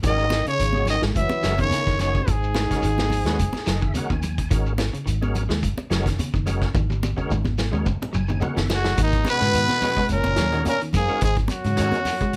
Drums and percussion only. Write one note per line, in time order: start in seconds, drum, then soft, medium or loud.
0.03 kick loud
0.03 closed hi-hat medium
0.03 high conga soft
0.03 low conga medium
0.03 shekere medium
0.19 shekere soft
0.30 snare medium
0.30 closed hi-hat soft
0.30 high conga medium
0.30 shekere medium
0.46 closed hi-hat soft
0.46 shekere soft
0.60 closed hi-hat medium
0.60 shekere medium
0.73 high conga medium
0.73 shekere soft
0.86 snare soft
0.86 closed hi-hat soft
0.86 low conga medium
0.86 shekere medium
1.02 snare medium
1.02 shekere soft
1.15 kick medium
1.15 closed hi-hat medium
1.15 high conga soft
1.15 shekere medium
1.29 high conga loud
1.29 shekere soft
1.43 snare medium
1.43 closed hi-hat medium
1.43 low conga medium
1.43 shekere medium
1.58 kick medium
1.58 closed hi-hat soft
1.58 high conga medium
1.58 shekere soft
1.71 snare soft
1.71 closed hi-hat medium
1.71 high conga medium
1.71 shekere medium
1.87 kick medium
1.87 snare soft
1.87 shekere soft
1.99 snare soft
1.99 closed hi-hat medium
1.99 low conga medium
1.99 shekere medium
2.14 kick medium
2.14 high conga soft
2.14 shekere soft
2.27 kick medium
2.27 closed hi-hat medium
2.27 high conga soft
2.27 shekere medium
2.43 shekere soft
2.55 snare medium
2.55 closed hi-hat soft
2.55 high conga medium
2.55 shekere medium
2.71 kick medium
2.71 snare soft
2.71 closed hi-hat medium
2.71 shekere soft
2.82 closed hi-hat medium
2.82 shekere medium
2.98 snare medium
2.98 high conga medium
2.98 shekere soft
3.10 open hi-hat medium
3.10 high conga medium
3.10 low conga medium
3.10 shekere medium
3.26 snare medium
3.26 closed hi-hat soft
3.26 shekere soft
3.39 kick medium
3.39 closed hi-hat medium
3.39 high conga soft
3.39 shekere medium
3.53 snare soft
3.53 high conga medium
3.53 shekere soft
3.66 snare medium
3.66 closed hi-hat medium
3.66 shekere medium
3.82 kick medium
3.82 shekere soft
3.94 closed hi-hat medium
3.94 high conga medium
3.94 shekere medium
4.10 kick medium
4.10 shekere soft
4.22 closed hi-hat medium
4.22 low conga medium
4.22 shekere medium
4.38 kick medium
4.38 closed hi-hat medium
4.38 high conga soft
4.38 shekere soft
4.51 kick loud
4.51 closed hi-hat medium
4.51 high conga soft
4.51 shekere medium
4.66 shekere soft
4.78 snare medium
4.78 closed hi-hat soft
4.78 high conga loud
4.78 shekere medium
4.94 closed hi-hat medium
4.94 shekere soft
5.07 closed hi-hat medium
5.07 shekere medium
5.22 high conga medium
5.22 shekere soft
5.35 closed hi-hat soft
5.35 low conga medium
5.35 shekere medium
5.50 snare medium
5.50 shekere soft
5.62 kick medium
5.62 closed hi-hat medium
5.62 high conga soft
5.62 shekere medium
5.78 high conga medium
5.78 shekere soft
5.91 snare medium
5.91 closed hi-hat medium
5.91 low conga medium
5.91 shekere medium
6.06 kick medium
6.06 snare soft
6.06 closed hi-hat soft
6.06 shekere soft
6.19 closed hi-hat medium
6.19 high conga medium
6.19 shekere medium
6.34 kick medium
6.34 shekere soft
6.47 closed hi-hat soft
6.47 low conga medium
6.47 shekere medium
6.61 kick medium
6.61 snare soft
6.61 high conga soft
6.61 shekere soft
6.75 kick loud
6.75 high tom medium
6.75 high conga soft
6.75 low conga medium
6.75 shekere medium
6.90 high tom soft
6.90 shekere soft
7.03 high tom medium
7.03 high conga loud
7.03 shekere medium
7.18 kick soft
7.18 shekere soft
7.31 mid tom medium
7.31 shekere medium
7.45 kick medium
7.45 high conga medium
7.45 shekere soft
7.58 snare medium
7.58 low conga medium
7.58 shekere medium
7.73 mid tom soft
7.73 shekere soft
7.86 kick medium
7.86 mid tom medium
7.86 high conga soft
7.86 shekere medium
8.02 mid tom medium
8.02 high conga medium
8.02 shekere soft
8.14 mid tom medium
8.14 shekere medium
8.28 mid tom medium
8.28 high conga medium
8.28 shekere soft
8.41 floor tom medium
8.41 high conga medium
8.41 shekere medium
8.57 snare medium
8.57 high conga loud
8.57 shekere soft
8.69 snare medium
8.69 low conga loud
8.69 shekere medium
8.84 snare medium
8.84 low conga loud
8.84 shekere soft
8.97 kick loud
8.97 closed hi-hat medium
8.97 high conga soft
8.97 shekere medium
9.12 kick medium
9.12 closed hi-hat soft
9.12 shekere soft
9.25 closed hi-hat soft
9.25 high conga medium
9.25 shekere medium
9.40 snare soft
9.40 shekere soft
9.54 closed hi-hat medium
9.54 shekere medium
9.69 snare soft
9.69 high conga medium
9.69 shekere soft
9.81 snare soft
9.81 open hi-hat medium
9.81 high conga medium
9.81 low conga medium
9.81 shekere medium
9.97 kick medium
9.97 shekere soft
10.09 closed hi-hat medium
10.09 high conga soft
10.09 shekere medium
10.24 high conga medium
10.24 shekere soft
10.36 snare medium
10.36 closed hi-hat medium
10.36 shekere medium
10.52 closed hi-hat soft
10.52 shekere soft
10.65 closed hi-hat medium
10.65 high conga medium
10.65 shekere medium
10.81 closed hi-hat soft
10.81 shekere soft
10.93 kick medium
10.93 closed hi-hat medium
10.93 low conga medium
10.93 shekere medium
11.08 high conga soft
11.08 shekere soft
11.20 kick loud
11.20 closed hi-hat medium
11.20 high conga soft
11.20 shekere medium
11.36 kick medium
11.36 closed hi-hat soft
11.36 shekere soft
11.48 closed hi-hat medium
11.48 high conga loud
11.48 shekere medium
11.64 closed hi-hat soft
11.64 shekere soft
11.77 snare soft
11.77 closed hi-hat medium
11.77 shekere medium
11.92 closed hi-hat soft
11.92 high conga medium
11.92 shekere soft
12.05 snare soft
12.05 open hi-hat medium
12.05 high conga medium
12.05 low conga medium
12.05 shekere medium
12.20 kick medium
12.20 closed hi-hat soft
12.20 shekere soft
12.33 closed hi-hat medium
12.33 high conga soft